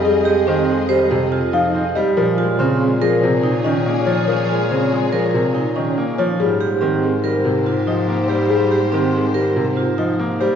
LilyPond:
<<
  \new Staff \with { instrumentName = "Marimba" } { \time 5/4 \key aes \major \tempo 4 = 142 aes'8 r8 c''8 r8 g'8 c''8 r8 f''8 r8 ees''8 | bes'8 r8 c''8 r8 aes'8 c''8 r8 ees''8 r8 des''8 | bes'8 r8 c''8 r8 aes'8 c''8 r8 ees''8 r8 des''8 | aes'8 r8 bes'8 r8 g'8 bes'8 r8 ees''8 r8 c''8 |
aes'8 r8 bes'8 r8 g'8 bes'8 r8 ees''8 r8 c''8 | }
  \new Staff \with { instrumentName = "Violin section" } { \time 5/4 \key aes \major <aes' ees''>1~ <aes' ees''>8 r8 | <aes' des''>1~ <aes' des''>4~ | <aes' des''>1~ <aes' des''>8 r8 | <g' c''>1~ <g' c''>4~ |
<g' c''>1~ <g' c''>8 r8 | }
  \new Staff \with { instrumentName = "Vibraphone" } { \time 5/4 \key aes \major r8 g'8 c'8 r8 c''8 r8 f'8 ees'8 r8 g'8 | r8 f'8 c'8 r8 bes'8 r8 ees'8 des'8 r8 f'8 | r8 f'8 c'8 r8 bes'8 r8 ees'8 des'8 r8 f'8 | r8 g'8 c'8 r8 bes'8 r8 f'8 ees'8 r8 g'8 |
r8 g'8 c'8 r8 bes'8 r8 f'8 ees'8 r8 g'8 | }
  \new Staff \with { instrumentName = "Grand piano" } { \clef bass \time 5/4 \key aes \major g8 aes8 ees8 aes8 g8 c8 r8 f8 c'8 g8 | f8 aes8 des8 aes8 f8 c8 r8 ees8 bes8 f8 | f8 aes8 des8 aes8 f8 c8 r8 ees8 bes8 f8 | g8 aes8 ees8 aes8 g8 c8 r8 f8 bes8 g8 |
g8 aes8 ees8 aes8 g8 c8 r8 f8 bes8 g8 | }
  \new Staff \with { instrumentName = "Bass clarinet" } { \clef bass \time 5/4 \key aes \major f,1~ f,4 | bes,1~ bes,4~ | bes,1~ bes,4 | aes,1~ aes,4~ |
aes,1~ aes,4 | }
>>